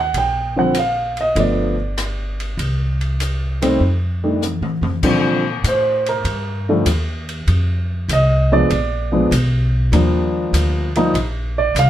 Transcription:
0.00 0.15 F#5 medium
0.14 1.32 A#1 medium
0.14 0.57 G5 medium
0.14 ride medium
0.56 0.73 D3 soft
0.56 0.73 F3 soft
0.56 0.73 G3 soft
0.56 0.74 C4 medium
0.56 0.76 F#5 medium
0.74 hi-hat pedal medium
0.74 ride medium
0.79 1.18 F5 medium
1.17 1.37 D#5 medium
1.17 ride soft
1.35 2.54 G1 medium
1.35 1.74 D3 soft
1.35 1.74 F3 soft
1.35 1.74 A3 soft
1.35 1.74 B3 soft
1.35 ride medium
1.40 2.56 D5 medium
1.98 cross-stick medium
1.98 hi-hat pedal medium
1.98 ride medium
2.40 ride soft
2.57 3.76 C2 medium
2.57 ride medium
3.01 ride soft
3.20 hi-hat pedal soft
3.20 ride medium
3.62 3.79 D#3 medium
3.62 3.79 G3 medium
3.62 3.79 A3 medium
3.62 3.79 C4 medium
3.62 ride medium
3.80 4.58 F2 medium
4.24 4.40 D#3 soft
4.24 4.40 G3 soft
4.24 4.41 A3 soft
4.24 4.41 D4 medium
4.42 hi-hat pedal medium
4.42 mid tom soft
4.61 4.81 A2 medium
4.61 mid tom soft
4.81 5.01 F2 medium
4.81 mid tom medium
5.03 5.62 A#2 medium
5.03 5.42 D3 medium
5.03 5.42 F3 medium
5.03 5.42 G3 medium
5.03 5.42 C4 medium
5.03 kick medium
5.03 crash medium
5.64 6.23 A2 medium
5.64 hi-hat pedal medium
5.64 ride medium
5.68 6.07 C5 medium
6.06 6.84 A#4 medium
6.06 ride soft
6.25 6.84 G2 medium
6.25 ride medium
6.69 6.85 D3 medium
6.69 6.86 F3 medium
6.69 6.86 G3 medium
6.69 6.86 A3 medium
6.86 7.45 D#2 medium
6.86 hi-hat pedal soft
6.86 ride medium
7.29 ride soft
7.47 8.07 F2 medium
7.47 ride soft
8.09 8.68 C2 medium
8.09 hi-hat pedal medium
8.09 ride medium
8.13 8.52 D#5 medium
8.52 8.69 F3 medium
8.52 8.69 G#3 medium
8.52 8.69 B3 medium
8.52 8.69 D4 medium
8.52 9.28 D5 medium
8.70 9.29 A#1 medium
8.70 ride medium
9.12 9.29 F3 medium
9.12 9.29 G#3 soft
9.12 9.29 B3 medium
9.12 9.29 D4 medium
9.31 9.90 B1 medium
9.31 hi-hat pedal medium
9.31 ride medium
9.92 10.51 D#2 medium
9.92 10.87 F3 medium
9.92 10.87 G3 medium
9.92 10.87 A#3 medium
9.92 10.87 D4 medium
9.92 ride medium
10.53 11.12 D2 medium
10.53 hi-hat pedal soft
10.53 ride medium
10.95 11.13 F3 medium
10.95 11.13 G3 medium
10.95 11.13 A#3 medium
10.95 11.13 D#4 medium
10.95 ride soft
11.14 11.73 A#1 medium
11.14 ride medium
11.58 11.76 D5 medium
11.75 11.90 C2 medium
11.75 hi-hat pedal medium
11.75 ride medium
11.79 11.90 F5 medium

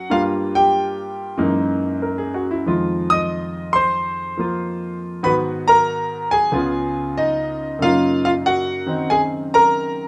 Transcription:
0.00 0.10 C#4 soft
0.00 0.12 F#5 loud
0.10 1.38 G2 medium
0.10 1.38 G3 soft
0.10 1.37 A#3 soft
0.10 1.38 F4 medium
0.10 0.21 F5 medium
0.55 1.35 G4 medium
0.55 1.35 G5 medium
1.37 2.66 F#2 medium
1.37 2.66 E3 soft
1.37 2.65 G#3 soft
1.37 2.66 A#3 soft
1.37 2.66 D#4 medium
2.02 2.32 A#4 soft
2.18 2.46 G#4 soft
2.34 2.54 F#4 soft
2.51 2.73 E4 medium
2.66 5.23 F2 soft
2.66 5.22 D#3 soft
2.66 5.23 G#3 soft
2.66 4.39 F4 medium
3.10 3.71 D#5 medium
3.10 3.76 D#6 loud
3.73 4.99 C5 medium
3.73 4.98 C6 medium
4.37 5.22 F3 soft
4.37 5.23 A#3 soft
4.37 5.24 F4 medium
5.23 6.51 G#2 medium
5.23 6.52 D#3 medium
5.23 6.51 B3 medium
5.23 6.52 F#4 medium
5.23 5.35 B4 medium
5.23 5.34 B5 medium
5.68 6.28 A#4 medium
5.68 6.27 A#5 loud
6.31 7.12 G#4 medium
6.31 7.18 G#5 loud
6.52 7.80 C#2 soft
6.52 7.79 C#3 soft
6.52 7.81 B3 soft
6.52 7.81 F4 medium
7.18 7.77 D#4 medium
7.18 7.77 D#5 medium
7.79 10.08 F#2 soft
7.79 10.08 C#3 soft
7.79 10.08 A#3 soft
7.79 8.22 F5 medium
7.83 8.88 D#4 medium
7.83 8.22 F4 medium
8.25 8.31 F4 medium
8.25 8.30 F5 medium
8.46 9.06 F#4 medium
8.46 9.11 F#5 medium
8.86 10.08 D#3 soft
8.86 10.08 C4 soft
8.86 10.08 D#4 medium
9.10 9.20 G#4 medium
9.10 9.20 G#5 medium
9.54 10.08 A#4 medium
9.54 10.08 A#5 medium

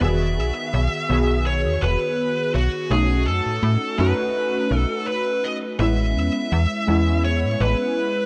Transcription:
0.00 0.39 E1 loud
0.00 1.06 D#3 medium
0.00 1.05 B3 medium
0.00 1.06 F#4 medium
0.00 1.07 G#4 medium
0.00 1.46 E5 loud
0.38 0.52 B1 medium
0.74 0.88 B1 loud
1.09 1.67 B1 medium
1.09 2.86 D#3 medium
1.09 2.86 B3 medium
1.09 2.87 F#4 medium
1.09 2.87 G#4 medium
1.47 1.83 C#5 loud
1.65 1.78 E2 loud
1.82 1.97 E1 loud
1.82 2.50 B4 loud
2.54 2.69 B1 medium
2.54 2.92 F#4 medium
2.89 3.28 B1 loud
2.89 3.94 A3 medium
2.89 3.95 C#4 medium
2.89 3.95 D#4 medium
2.89 3.96 F#4 medium
2.89 3.24 G#4 loud
3.27 3.41 F#2 medium
3.27 3.99 A4 loud
3.46 3.60 A2 soft
3.63 3.77 A2 loud
3.97 4.13 F#2 medium
3.97 5.75 A3 medium
3.97 5.75 C#4 medium
3.97 5.76 D#4 medium
3.97 5.76 F#4 medium
3.97 4.76 B4 medium
4.71 4.86 B1 medium
4.76 5.06 A4 medium
5.08 5.45 B4 medium
5.44 5.54 D#5 medium
5.78 6.17 A1 loud
5.78 6.83 G#3 medium
5.78 6.84 B3 medium
5.78 6.84 C#4 medium
5.78 6.85 E4 medium
5.78 7.24 E5 loud
6.16 6.30 E2 medium
6.52 6.67 E2 loud
6.87 7.45 E2 medium
6.87 8.26 G#3 medium
6.87 8.26 B3 medium
6.87 8.26 C#4 medium
6.87 8.26 E4 loud
7.25 7.62 C#5 loud
7.44 7.56 A2 loud
7.60 7.75 A1 loud
7.60 8.26 B4 loud

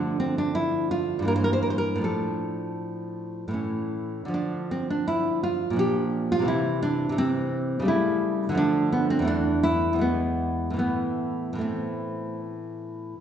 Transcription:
0.00 1.19 D3 soft
0.00 1.21 F3 soft
0.00 1.22 A3 soft
0.00 0.19 D4 medium
0.20 0.38 C4 medium
0.38 0.56 D4 medium
0.55 0.90 E4 medium
0.91 1.26 F4 medium
1.19 1.97 G2 soft
1.19 1.98 E3 soft
1.25 2.00 A#3 soft
1.25 1.35 A#4 medium
1.36 1.44 C5 medium
1.44 1.53 A#4 medium
1.53 1.62 C5 medium
1.63 1.70 A#4 medium
1.70 1.78 C5 medium
1.78 2.03 A#4 medium
1.96 3.47 A2 soft
1.96 3.50 F3 soft
2.01 3.52 D4 soft
2.01 3.92 A4 medium
3.48 4.25 A2 soft
3.48 4.28 E3 soft
3.54 4.30 C#4 soft
4.25 5.70 D3 soft
4.25 5.71 F3 soft
4.34 4.70 D4 medium
4.71 4.90 C4 medium
4.90 5.08 D4 medium
5.08 5.42 E4 medium
5.43 5.77 F4 medium
5.70 6.39 A#2 soft
5.70 6.42 F3 soft
5.76 6.44 D4 soft
5.76 6.29 G4 medium
6.32 6.48 F4 medium
6.39 7.08 C3 soft
6.39 7.11 E3 soft
6.45 7.14 C4 soft
6.45 6.81 E4 medium
6.83 7.16 D4 medium
7.09 7.79 C3 soft
7.09 7.82 E3 soft
7.18 7.85 C4 medium
7.79 8.49 C#3 medium
7.79 8.51 G3 soft
7.85 8.54 A3 soft
7.85 8.55 E4 medium
8.49 9.21 D3 medium
8.49 9.22 F3 soft
8.55 9.24 A3 soft
8.55 8.91 D4 medium
8.92 9.10 B3 medium
9.10 9.27 C4 medium
9.19 9.92 E2 soft
9.19 9.94 E3 soft
9.25 9.98 A3 soft
9.25 9.62 D4 medium
9.63 10.00 E4 medium
9.93 10.73 E2 soft
9.93 10.72 E3 soft
9.99 10.76 G#3 soft
9.99 10.76 B3 medium
10.70 11.52 A2 soft
10.70 11.54 E3 soft
10.77 11.57 A3 soft
10.77 11.58 B3 medium
11.53 13.14 A2 soft
11.53 13.15 E3 soft
11.59 13.17 A3 soft
11.59 12.39 C4 soft

